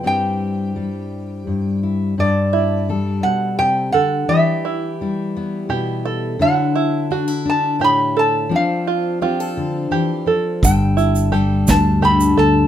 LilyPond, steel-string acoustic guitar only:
\new Staff \with { instrumentName = "Steel-string acoustic guitar" } { \time 6/8 \key g \major \tempo 4. = 57 << { <c' e' g'>2~ <c' e' g'>8 e'8 | a'4 a'2 | g'4 e'8 b8 e'4 | <fis d' e' a'>4 d'16 e'16 d'8 e'4 |
<c' d' a'>4 g'16 a'4.~ a'16 | a'4 a'8 d'8 a'4 | } \\ { g,4 g4 g,4 | g,4 g8 b,8 c8 d8 | e4 g4 b,4 | d2 a,4 |
f4 c'8 d8 e8 f8 | g,4 g4 d4 | } >> }